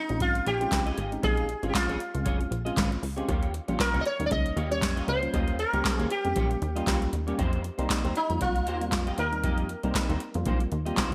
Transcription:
Already playing: D#4
0.09 A#1 G#3 C4 C#4 F4, muted clean electric guitar stroke, closed hi-hat
0.20 G#1 F4, kick, closed hi-hat
0.35 muted clean electric guitar stroke, closed hi-hat
0.46 A#1 C#4 F4 G4 G#4 C#5, closed hi-hat
0.60 G#3 C4 C#4 F4, muted clean electric guitar stroke, closed hi-hat
0.72 C#2, muted clean electric guitar stroke, kick, snare, clap, closed hi-hat
0.86 C#4 F4 G#4 D#5, closed hi-hat
0.97 G#1 C#4 F4 G#4 D#5, closed hi-hat
1.12 G#3 C4 C#4 D#4, muted clean electric guitar stroke, closed hi-hat
1.22 A#1 C#4 F4 G#4 D#5, kick, closed hi-hat
1.37 closed hi-hat
1.49 muted clean electric guitar stroke, closed hi-hat
1.63 G#1 G#3 C4 C#4 F4 G#4 C#5, closed hi-hat
1.69 G4
1.74 F4, muted clean electric guitar stroke, kick, snare, clap, closed hi-hat
1.88 A#1 C#4 F4 G#4 C#5, closed hi-hat
2.00 muted clean electric guitar stroke, closed hi-hat
2.14 C#2 G#3 C4 C#4 F4, muted clean electric guitar stroke, closed hi-hat
2.25 F1 C#4 F4 G#4 C#5, kick, closed hi-hat
2.39 muted clean electric guitar stroke, closed hi-hat
2.51 A#1, muted clean electric guitar stroke, closed hi-hat
2.65 G#3 C4 C#4 F4 G#4 D#5, closed hi-hat
2.76 G#1 C#4 F4 G#4 C#5, kick, snare, clap, closed hi-hat
2.91 muted clean electric guitar stroke, closed hi-hat
3.02 C#2, muted clean electric guitar stroke, open hi-hat
3.16 G#3 C4 C#4 F4 G4 G#4 C#5, closed hi-hat
3.28 D#2 A#3 F4 G4 C#5, kick, closed hi-hat
3.43 closed hi-hat
3.54 muted clean electric guitar stroke, closed hi-hat
3.68 A#1 G3 A#3 C#4 F4 G4 C#5, closed hi-hat
3.79 A#4, muted clean electric guitar stroke, kick, snare, clap, closed hi-hat
3.93 C#2 A#3 F4 G4 C#5, closed hi-hat
4.01 D#5, muted clean electric guitar stroke
4.06 C#5, closed hi-hat
4.19 D#2 G3 A#3 C#4 D#4, muted clean electric guitar stroke, closed hi-hat
4.26 D5
4.31 C#2 D#5, kick, closed hi-hat
4.45 muted clean electric guitar stroke, closed hi-hat
4.56 D#2 A#3 F4 G4 C#5, closed hi-hat
4.71 G3 A#3 C#4 G4 C#5, muted clean electric guitar stroke, closed hi-hat
4.82 F2, muted clean electric guitar stroke, kick, snare, clap, closed hi-hat
4.96 A#3 F4 G4 D#5, closed hi-hat
5.07 C#2 A#3 F4 G4 C5 D#5, closed hi-hat
5.22 G3 A#3 C#4 F4, muted clean electric guitar stroke, closed hi-hat
5.33 D#2 A#3 F4 G4 D#5, kick, closed hi-hat
5.48 closed hi-hat
5.59 A#4, muted clean electric guitar stroke, closed hi-hat
5.73 C#2 G3 A#3 C#4 F4 G4 C#5, closed hi-hat
5.85 kick, snare, clap, closed hi-hat
5.98 D#2 A#3 F4 G4 C#5, closed hi-hat
6.10 G4, muted clean electric guitar stroke, closed hi-hat
6.25 F2 G3 A#3 C#4 G4, muted clean electric guitar stroke, closed hi-hat
6.36 A#1 A#3 F4 G4 C#5, kick, closed hi-hat
6.50 muted clean electric guitar stroke, closed hi-hat
6.61 D#2, muted clean electric guitar stroke, closed hi-hat
6.76 G3 A#3 C#4 F4 G4 D#5, closed hi-hat
6.87 C#2 A#3 F4 G4 C#5, kick, snare, clap, closed hi-hat
7.01 muted clean electric guitar stroke, closed hi-hat
7.13 D#2, muted clean electric guitar stroke, closed hi-hat
7.27 G3 A#3 C#4 F4 G4 C#5, closed hi-hat
7.38 F2 A#3 D#4 G4 C5, kick, closed hi-hat
7.53 closed hi-hat
7.64 muted clean electric guitar stroke, closed hi-hat
7.78 C2 G3 A#3 C4 D#4 G4 C5, closed hi-hat
7.90 kick, snare, clap, closed hi-hat
8.04 D#2 A#3 D#4 G4 C5, closed hi-hat
8.15 D#4, muted clean electric guitar stroke, closed hi-hat
8.30 F2 G3 A#3 C4 F4, muted clean electric guitar stroke, closed hi-hat
8.41 C2 F4, kick, closed hi-hat
8.55 muted clean electric guitar stroke, closed hi-hat
8.66 D#2 A#3 D#4 G4 C5, closed hi-hat
8.81 G3 A#3 C4 F4, muted clean electric guitar stroke, closed hi-hat
8.92 F2, muted clean electric guitar stroke, kick, snare, clap, closed hi-hat
9.06 A#3 D#4 G4 D#5, closed hi-hat
9.17 D#2 A#3 D#4 G4 A#4 D#5, closed hi-hat
9.32 G3 A#3 C4 D#4, muted clean electric guitar stroke, closed hi-hat
9.43 F2 A#3 D#4 G4 D#5, kick, closed hi-hat
9.58 closed hi-hat
9.69 muted clean electric guitar stroke, closed hi-hat
9.83 C2 G3 A#3 C4 D#4 G4 C5, closed hi-hat
9.95 muted clean electric guitar stroke, kick, snare, clap, closed hi-hat
10.09 D#2 A#3 D#4 G4 C5, closed hi-hat
10.20 muted clean electric guitar stroke, closed hi-hat
10.34 F2 G3 A#3 C4 F4, muted clean electric guitar stroke, closed hi-hat
10.46 A#1 A#3 D#4 G4 C5, kick, closed hi-hat
10.60 muted clean electric guitar stroke, closed hi-hat
10.72 D#2, muted clean electric guitar stroke, closed hi-hat
10.85 G3 A#3 C4 D#4 F4 G4 D#5, closed hi-hat
10.97 C2 A#3 D#4 G4 C5, kick, snare, clap, closed hi-hat
11.11 muted clean electric guitar stroke

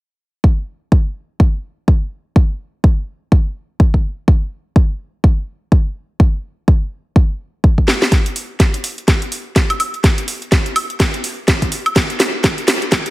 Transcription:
0.44 kick
0.92 kick
1.40 kick
1.88 kick
2.36 kick
2.84 kick
3.32 kick
3.80 kick
3.94 kick
4.28 kick
4.76 kick
5.24 kick
5.72 kick
6.20 kick
6.68 kick
7.16 kick
7.64 kick
7.78 kick
7.88 snare
8.02 snare
8.12 kick, snare, closed hi-hat
8.26 closed hi-hat
8.36 open hi-hat
8.60 kick, snare, closed hi-hat
8.74 closed hi-hat
8.84 open hi-hat
8.98 closed hi-hat
9.08 kick, snare, closed hi-hat
9.22 closed hi-hat
9.32 open hi-hat
9.56 kick, snare, closed hi-hat
9.70 closed hi-hat, high woodblock
9.80 open hi-hat, high woodblock
9.94 closed hi-hat
10.04 kick, snare, closed hi-hat
10.18 closed hi-hat
10.28 open hi-hat
10.42 closed hi-hat
10.52 kick, snare, closed hi-hat
10.66 closed hi-hat
10.76 open hi-hat, high woodblock
10.90 closed hi-hat
11.00 kick, snare, closed hi-hat
11.14 closed hi-hat
11.24 open hi-hat
11.48 kick, snare, closed hi-hat
11.62 kick, closed hi-hat
11.72 open hi-hat
11.86 closed hi-hat, high woodblock
11.96 kick, snare, closed hi-hat
12.10 closed hi-hat
12.20 snare, open hi-hat
12.44 kick, snare, closed hi-hat
12.58 closed hi-hat
12.68 snare, open hi-hat
12.82 closed hi-hat
12.92 kick, snare, closed hi-hat
13.06 closed hi-hat

